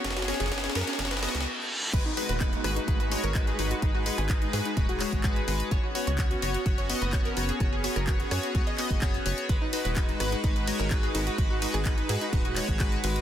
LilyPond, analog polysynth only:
\new Staff \with { instrumentName = "Analog polysynth" } { \time 4/4 \key gis \minor \tempo 4 = 127 <b fis' cis''>8 <b fis' cis''>8 <b fis' cis''>8 <b fis' cis''>8 <b fis' cis''>8 <b fis' dis''>8 r4 | <gis fis' b'>8 <gis fis' b'>8 <gis fis' b'>8 <gis fis' b'>8 <gis fis' b'>8 <gis fis' cis''>8 <gis fis' b'>8 <gis fis' b'>8 | <gis fis' b'>8 <gis fis' b'>8 <gis fis' b'>8 <gis fis' b'>8 <gis fis' b'>8 <gis fis' cis''>8 <gis fis' b'>8 <gis fis' b'>8 | <b fis' cis''>8 <b fis' cis''>8 <b fis' cis''>8 <b fis' cis''>8 <b fis' cis''>8 <b fis' dis''>8 <b fis' cis''>8 <b fis' cis''>8 |
<b fis' cis''>8 <b fis' cis''>8 <b fis' cis''>8 <b fis' cis''>8 <b fis' cis''>8 <b fis' dis''>8 <b fis' cis''>8 <b fis' cis''>8 | <gis fis' b'>8 <gis fis' b'>8 <gis fis' b'>8 <gis fis' b'>8 <gis fis' b'>8 <gis fis' cis''>8 <gis fis' b'>8 <gis fis' b'>8 | <gis fis' b'>8 <gis fis' b'>8 <gis fis' b'>8 <gis fis' b'>8 <gis fis' b'>8 <gis fis' cis''>8 <gis fis' b'>8 <gis fis' b'>8 | }